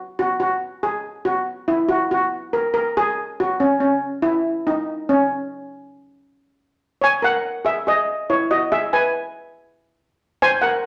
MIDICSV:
0, 0, Header, 1, 2, 480
1, 0, Start_track
1, 0, Tempo, 426743
1, 195, Time_signature, 4, 2, 24, 8
1, 12215, End_track
2, 0, Start_track
2, 0, Title_t, "Steel pan"
2, 0, Program_c, 0, 114
2, 213, Note_on_c, 0, 66, 99
2, 435, Note_off_c, 0, 66, 0
2, 448, Note_on_c, 0, 66, 99
2, 935, Note_off_c, 0, 66, 0
2, 935, Note_on_c, 0, 68, 89
2, 1371, Note_off_c, 0, 68, 0
2, 1407, Note_on_c, 0, 66, 96
2, 1888, Note_on_c, 0, 64, 99
2, 1894, Note_off_c, 0, 66, 0
2, 2105, Note_off_c, 0, 64, 0
2, 2121, Note_on_c, 0, 66, 104
2, 2362, Note_off_c, 0, 66, 0
2, 2376, Note_on_c, 0, 66, 100
2, 2848, Note_on_c, 0, 70, 95
2, 2859, Note_off_c, 0, 66, 0
2, 3066, Note_off_c, 0, 70, 0
2, 3080, Note_on_c, 0, 70, 105
2, 3324, Note_off_c, 0, 70, 0
2, 3342, Note_on_c, 0, 68, 104
2, 3822, Note_off_c, 0, 68, 0
2, 3825, Note_on_c, 0, 66, 95
2, 4050, Note_on_c, 0, 61, 93
2, 4056, Note_off_c, 0, 66, 0
2, 4263, Note_off_c, 0, 61, 0
2, 4277, Note_on_c, 0, 61, 90
2, 4751, Note_on_c, 0, 64, 89
2, 4770, Note_off_c, 0, 61, 0
2, 5247, Note_off_c, 0, 64, 0
2, 5249, Note_on_c, 0, 63, 95
2, 5727, Note_on_c, 0, 61, 90
2, 5737, Note_off_c, 0, 63, 0
2, 7358, Note_off_c, 0, 61, 0
2, 7890, Note_on_c, 0, 73, 87
2, 7916, Note_on_c, 0, 80, 115
2, 7995, Note_off_c, 0, 73, 0
2, 8015, Note_off_c, 0, 80, 0
2, 8126, Note_on_c, 0, 70, 91
2, 8148, Note_on_c, 0, 78, 112
2, 8568, Note_off_c, 0, 70, 0
2, 8601, Note_on_c, 0, 68, 76
2, 8613, Note_on_c, 0, 76, 95
2, 8627, Note_off_c, 0, 78, 0
2, 8708, Note_off_c, 0, 68, 0
2, 8718, Note_off_c, 0, 76, 0
2, 8852, Note_on_c, 0, 68, 79
2, 8864, Note_on_c, 0, 75, 109
2, 9292, Note_off_c, 0, 68, 0
2, 9298, Note_off_c, 0, 75, 0
2, 9332, Note_on_c, 0, 64, 67
2, 9334, Note_on_c, 0, 73, 82
2, 9549, Note_off_c, 0, 64, 0
2, 9549, Note_off_c, 0, 73, 0
2, 9569, Note_on_c, 0, 75, 96
2, 9571, Note_on_c, 0, 66, 70
2, 9787, Note_off_c, 0, 75, 0
2, 9788, Note_off_c, 0, 66, 0
2, 9807, Note_on_c, 0, 68, 81
2, 9807, Note_on_c, 0, 76, 101
2, 9913, Note_off_c, 0, 68, 0
2, 9913, Note_off_c, 0, 76, 0
2, 10045, Note_on_c, 0, 80, 101
2, 10049, Note_on_c, 0, 71, 79
2, 10957, Note_off_c, 0, 80, 0
2, 10959, Note_off_c, 0, 71, 0
2, 11723, Note_on_c, 0, 72, 98
2, 11723, Note_on_c, 0, 80, 121
2, 11940, Note_on_c, 0, 78, 113
2, 11944, Note_off_c, 0, 72, 0
2, 11954, Note_on_c, 0, 70, 87
2, 11968, Note_off_c, 0, 80, 0
2, 12215, Note_off_c, 0, 70, 0
2, 12215, Note_off_c, 0, 78, 0
2, 12215, End_track
0, 0, End_of_file